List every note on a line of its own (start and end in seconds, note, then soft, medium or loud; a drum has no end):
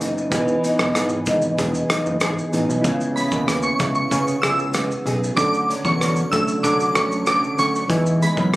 0.00 0.33 F#1 medium
0.00 0.27 B3 medium
0.00 0.28 D#4 medium
0.00 0.63 D#4 medium
0.00 0.26 E4 medium
0.00 0.29 G#4 medium
0.00 0.95 G#4 medium
0.00 closed hi-hat soft
0.00 shaker soft
0.18 shaker medium
0.29 0.57 E1 loud
0.29 2.48 E3 medium
0.29 3.83 E3 medium
0.29 2.48 B3 medium
0.29 2.49 D#4 medium
0.29 kick loud
0.29 closed hi-hat medium
0.29 shaker medium
0.34 2.50 G#4 medium
0.48 shaker medium
0.63 1.26 D#4 medium
0.63 closed hi-hat soft
0.63 shaker medium
0.79 0.92 E1 loud
0.79 cross-stick medium
0.79 shaker medium
0.95 1.20 G#1 medium
0.95 1.58 G#4 medium
0.95 cross-stick medium
0.95 closed hi-hat medium
0.95 shaker medium
1.09 shaker soft
1.26 1.52 G#1 medium
1.26 1.89 D#4 medium
1.26 kick medium
1.26 closed hi-hat medium
1.26 shaker medium
1.42 shaker medium
1.58 1.84 E1 loud
1.58 2.22 G#4 medium
1.58 kick medium
1.58 closed hi-hat medium
1.58 shaker medium
1.74 shaker soft
1.90 1.96 F#1 soft
1.90 2.52 D#4 medium
1.90 cross-stick medium
1.90 closed hi-hat medium
1.90 shaker medium
2.06 2.19 F#1 medium
2.06 shaker medium
2.20 2.34 G#1 medium
2.20 3.48 G#4 medium
2.20 cross-stick medium
2.20 closed hi-hat medium
2.20 shaker medium
2.38 shaker soft
2.51 2.66 A1 medium
2.51 2.84 E3 medium
2.51 2.82 B3 medium
2.51 2.85 D#4 soft
2.51 2.91 D#4 medium
2.51 2.85 G#4 medium
2.51 closed hi-hat soft
2.51 shaker soft
2.69 2.81 B1 medium
2.69 shaker medium
2.81 3.22 C#2 loud
2.81 5.32 B3 medium
2.81 5.33 C#4 medium
2.81 5.31 E4 medium
2.81 kick loud
2.81 closed hi-hat medium
2.81 shaker medium
2.86 5.37 C#3 medium
2.86 5.34 G#4 medium
3.01 shaker medium
3.16 4.10 B3 medium
3.16 3.31 B5 medium
3.16 closed hi-hat medium
3.16 shaker medium
3.32 3.70 D#2 medium
3.32 kick medium
3.32 shaker medium
3.48 4.42 G#4 medium
3.48 cross-stick medium
3.48 closed hi-hat medium
3.48 shaker medium
3.62 3.78 C#6 medium
3.62 shaker soft
3.79 4.05 C#2 loud
3.79 5.43 E4 medium
3.79 kick loud
3.79 cross-stick medium
3.79 closed hi-hat medium
3.79 shaker medium
3.95 4.25 C#6 medium
3.95 shaker medium
4.11 4.36 C#3 loud
4.11 4.73 B3 medium
4.11 kick medium
4.11 closed hi-hat medium
4.11 shaker medium
4.27 shaker soft
4.42 4.93 C#2 medium
4.42 5.04 G#4 medium
4.42 4.57 E6 medium
4.42 cross-stick medium
4.42 closed hi-hat medium
4.42 shaker medium
4.59 shaker medium
4.74 5.44 B3 medium
4.74 cross-stick medium
4.74 closed hi-hat medium
4.74 shaker medium
4.91 shaker soft
5.06 5.31 B1 medium
5.06 5.44 G#4 medium
5.06 closed hi-hat soft
5.06 shaker soft
5.24 shaker medium
5.34 5.75 D2 loud
5.34 7.89 D3 medium
5.34 6.90 F#3 medium
5.34 6.91 C#4 medium
5.34 6.92 D4 medium
5.34 5.52 D6 loud
5.34 kick loud
5.38 6.93 A4 medium
5.38 closed hi-hat medium
5.38 shaker medium
5.54 shaker medium
5.69 6.62 F#3 medium
5.69 closed hi-hat medium
5.69 shaker soft
5.85 6.23 E2 medium
5.85 6.15 C#6 medium
5.85 kick medium
5.85 shaker medium
6.00 6.94 C#4 medium
6.00 cross-stick medium
6.00 closed hi-hat medium
6.00 shaker medium
6.16 shaker soft
6.32 6.58 D2 medium
6.32 7.96 A3 medium
6.32 6.47 E6 medium
6.32 kick loud
6.32 closed hi-hat medium
6.32 shaker medium
6.48 shaker medium
6.63 6.89 D3 loud
6.63 7.26 F#3 medium
6.63 6.93 D6 medium
6.63 kick medium
6.63 closed hi-hat medium
6.63 shaker medium
6.80 shaker soft
6.94 7.46 D2 medium
6.94 7.89 F#3 medium
6.94 7.56 C#4 medium
6.94 7.90 C#4 medium
6.94 7.90 D4 medium
6.94 7.91 A4 medium
6.94 7.10 C#6 medium
6.94 cross-stick loud
6.94 closed hi-hat soft
6.94 shaker medium
7.12 shaker medium
7.26 7.96 F#3 medium
7.26 7.42 D6 medium
7.26 cross-stick medium
7.26 closed hi-hat medium
7.26 shaker medium
7.44 shaker soft
7.57 7.84 D2 medium
7.57 7.96 C#4 medium
7.57 7.74 C#6 medium
7.57 closed hi-hat soft
7.57 shaker soft
7.75 shaker medium
7.87 8.28 E2 loud
7.87 8.56 E3 medium
7.87 8.56 B3 medium
7.87 8.56 D#4 medium
7.87 kick loud
7.87 closed hi-hat medium
7.87 shaker medium
7.92 8.56 G#4 medium
8.06 shaker medium
8.22 8.56 G#3 medium
8.22 8.37 B5 medium
8.22 closed hi-hat medium
8.22 shaker medium
8.37 8.56 F#2 medium
8.37 kick medium
8.37 shaker medium